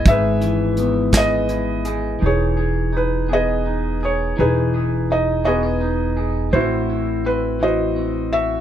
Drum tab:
HH |xxxxxx|------|------|------|
SD |---o--|------|------|------|
BD |o--o--|------|------|------|